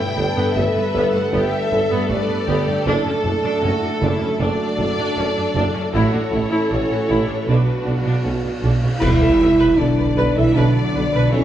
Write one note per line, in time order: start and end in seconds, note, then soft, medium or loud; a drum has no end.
0.00 2.69 G3 medium
0.00 5.91 A3 medium
0.00 5.90 D4 medium
0.00 0.17 E4 medium
0.00 5.90 A4 medium
0.00 2.70 B4 medium
0.00 0.56 G5 loud
0.17 0.25 G1 medium
0.17 0.26 G2 medium
0.17 0.25 B3 medium
0.17 0.56 D4 medium
0.37 0.45 G2 medium
0.37 0.55 B3 medium
0.56 0.63 G1 medium
0.56 0.64 G2 medium
0.56 0.64 A3 medium
0.56 1.33 B4 medium
0.56 1.14 E5 loud
0.76 0.84 G2 medium
0.76 0.84 B3 soft
0.94 1.01 G1 medium
0.94 1.03 G1 medium
0.94 1.03 G2 medium
0.94 1.12 B3 medium
1.13 1.22 G2 medium
1.13 1.21 A3 medium
1.13 1.34 F#5 medium
1.32 1.40 G1 medium
1.32 1.41 G1 medium
1.32 1.41 G2 medium
1.32 1.50 B3 medium
1.32 1.71 G4 medium
1.32 2.10 E5 loud
1.71 1.79 G1 medium
1.71 1.80 G2 medium
1.71 1.79 B3 medium
1.71 2.09 A4 medium
1.90 1.99 G2 medium
1.90 2.08 B3 medium
2.09 2.17 G1 medium
2.09 2.18 G2 medium
2.09 2.18 A3 medium
2.09 2.48 B4 medium
2.09 2.85 D5 loud
2.29 2.37 G2 medium
2.29 2.37 B3 medium
2.48 2.55 G1 medium
2.48 2.56 G1 medium
2.48 2.57 G2 medium
2.48 2.66 B3 medium
2.48 2.85 G4 medium
2.67 2.75 G2 medium
2.67 2.75 A3 medium
2.86 2.94 F#1 medium
2.86 2.94 F#2 medium
2.86 5.90 F#3 medium
2.86 3.04 D4 loud
2.86 4.40 A4 loud
2.86 3.63 A4 medium
2.86 7.44 A4 medium
3.05 3.13 F#2 medium
3.05 3.14 C#4 medium
3.25 3.32 F#1 medium
3.25 3.32 F#2 medium
3.25 3.33 D4 medium
3.44 3.52 F#2 medium
3.44 3.62 D4 medium
3.63 3.71 F#1 medium
3.63 3.71 F#2 soft
3.63 3.71 C#4 medium
3.63 4.02 F#4 medium
3.82 3.90 F#2 medium
3.82 3.91 D4 soft
4.01 4.09 F#1 medium
4.01 4.09 F#2 medium
4.01 4.20 D4 medium
4.01 4.39 E4 medium
4.21 4.29 F#2 medium
4.21 4.29 C#4 medium
4.40 4.47 F#1 medium
4.40 4.47 F#2 medium
4.40 4.58 D4 medium
4.40 5.91 D4 medium
4.40 5.94 D5 loud
4.78 4.86 F#1 medium
4.78 4.86 F#2 medium
4.78 4.87 D4 medium
4.98 5.05 F#2 medium
4.98 5.16 D4 medium
5.17 5.25 F#1 medium
5.17 5.25 F#2 medium
5.17 5.25 C#4 medium
5.36 5.44 F#2 soft
5.36 5.44 D4 medium
5.55 5.63 F#1 medium
5.55 5.63 F#2 medium
5.55 5.73 D4 medium
5.74 5.83 F#2 medium
5.74 5.82 C#4 medium
5.93 6.01 A1 medium
5.93 6.01 A2 medium
5.93 7.44 E3 medium
5.93 7.44 A3 medium
5.93 7.43 C#4 medium
5.93 6.12 E4 medium
5.93 6.32 F#4 medium
5.93 7.45 A4 medium
5.93 7.45 C#5 loud
5.93 cymbal swell medium
6.13 6.21 A2 medium
6.13 6.20 D4 medium
6.31 6.40 A1 medium
6.31 6.40 A2 medium
6.31 6.39 E4 medium
6.31 6.71 E4 medium
6.50 6.58 A2 medium
6.50 6.69 E4 medium
6.70 6.78 A1 medium
6.70 6.79 A1 medium
6.70 6.78 A2 soft
6.70 6.78 D4 soft
6.70 7.10 F#4 medium
6.90 6.98 A2 soft
6.90 6.98 E4 soft
7.08 7.16 A1 medium
7.08 7.17 A1 medium
7.08 7.17 A2 medium
7.08 7.27 E4 medium
7.08 7.48 E4 medium
7.28 7.37 A2 soft
7.28 7.36 D4 soft
7.46 7.55 B1 medium
7.46 7.55 B2 medium
7.46 8.66 F#3 medium
7.46 8.66 B3 medium
7.46 8.65 D4 medium
7.46 8.63 D4 medium
7.46 7.66 D4 medium
7.46 8.65 F#4 medium
7.46 8.82 F#4 medium
7.46 8.25 B4 medium
7.86 7.94 B1 soft
7.86 7.94 B2 soft
7.86 7.94 D4 soft
8.05 8.13 B2 medium
8.05 8.23 D4 medium
8.24 8.32 B1 soft
8.24 8.33 B1 soft
8.24 8.32 B2 soft
8.24 8.32 C#4 soft
8.44 8.51 B2 soft
8.44 8.52 D4 medium
8.62 8.70 B1 medium
8.62 8.71 B1 medium
8.62 8.71 B2 medium
8.62 8.81 D4 medium
8.82 8.90 B2 soft
8.82 8.90 C#4 soft
9.00 9.09 B1 medium
9.00 9.74 E3 medium
9.00 9.74 G3 medium
9.00 9.74 E4 medium
9.00 9.19 B4 medium
9.00 9.74 E5 medium
9.00 concert bass drum medium
9.00 crash medium
9.00 sub drop medium
9.21 9.29 B1 medium
9.21 9.29 A4 medium
9.39 9.47 B1 medium
9.39 9.48 B1 medium
9.39 9.48 B4 soft
9.59 9.68 B1 medium
9.59 9.77 B4 medium
9.76 9.86 B1 medium
9.76 9.88 B1 medium
9.76 10.34 D3 medium
9.76 10.36 F#3 medium
9.76 10.35 D4 medium
9.76 9.87 A4 soft
9.76 10.35 D5 medium
9.99 10.07 B1 medium
9.99 10.06 B4 medium
10.16 10.24 B1 medium
10.16 10.26 B1 medium
10.16 10.35 B4 medium
10.34 10.45 B1 medium
10.34 10.55 E3 medium
10.34 10.55 G3 medium
10.34 10.56 E4 medium
10.34 10.45 A4 medium
10.34 10.55 E5 medium
10.53 10.63 B1 medium
10.53 10.64 B1 medium
10.53 11.30 D3 medium
10.53 11.32 F#3 medium
10.53 11.32 D4 medium
10.53 10.74 B4 medium
10.53 11.32 D5 medium
10.53 11.33 D5 medium
10.94 11.01 B1 medium
10.94 11.03 B4 medium
11.13 11.21 B1 medium
11.13 11.32 B4 medium
11.30 11.40 B1 medium
11.30 11.40 B1 soft
11.30 11.44 C#3 medium
11.30 11.44 E3 medium
11.30 11.44 C#4 medium
11.30 11.41 A4 medium
11.30 11.44 C#5 medium